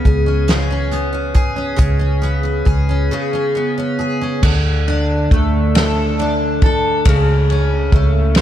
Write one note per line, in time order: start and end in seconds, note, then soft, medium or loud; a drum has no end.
0.00 0.47 C#3 medium
0.00 0.90 B3 soft
0.00 0.25 C#4 soft
0.05 1.75 C#2 medium
0.05 0.48 G#4 medium
0.05 kick medium
0.05 closed hi-hat soft
0.26 0.69 C#4 soft
0.48 1.75 C#3 medium
0.48 1.33 G#4 soft
0.48 snare medium
0.48 closed hi-hat medium
0.71 1.11 C#4 soft
0.91 2.20 B3 soft
0.91 closed hi-hat soft
1.13 1.55 C#4 medium
1.34 1.76 G#4 medium
1.34 kick medium
1.34 closed hi-hat soft
1.56 1.98 C#4 soft
1.76 2.63 C#2 medium
1.76 3.09 C#3 medium
1.76 2.64 G#4 soft
1.76 kick medium
1.76 closed hi-hat medium
1.99 2.42 C#4 soft
2.22 3.54 B3 soft
2.22 closed hi-hat soft
2.43 2.88 C#4 soft
2.65 3.08 C#2 medium
2.65 3.10 G#4 medium
2.65 kick medium
2.65 closed hi-hat soft
2.89 3.32 C#4 soft
3.11 4.43 C#3 medium
3.11 3.98 G#4 soft
3.33 3.76 C#4 soft
3.55 4.52 B3 soft
3.78 4.20 C#4 soft
3.99 4.52 G#4 soft
4.21 4.52 C#4 soft
4.43 5.27 D2 loud
4.43 7.06 D3 medium
4.43 kick medium
4.43 crash medium
4.88 6.18 D4 medium
4.88 ride soft
5.31 7.02 D2 medium
5.31 7.93 A3 medium
5.31 kick medium
5.31 ride soft
5.75 6.63 A4 medium
5.75 snare loud
5.75 ride medium
6.19 7.15 D4 medium
6.19 ride soft
6.62 8.37 A4 medium
6.62 kick medium
6.62 ride soft
7.05 7.88 C#2 loud
7.05 8.41 C#3 medium
7.05 kick loud
7.05 ride medium
7.50 8.41 C#4 medium
7.50 ride soft
7.92 8.41 C#2 medium
7.92 8.41 A3 medium
7.92 kick medium
7.92 ride soft
8.35 8.41 A4 medium
8.35 snare loud
8.35 ride medium